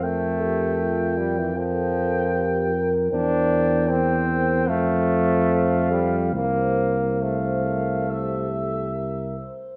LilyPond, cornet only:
\new Staff \with { instrumentName = "Cornet" } { \time 4/4 \key f \major \tempo 4 = 76 g''2 g''2 | g''4 g''4 f''2 | f''4 f''4 e''4. r8 | }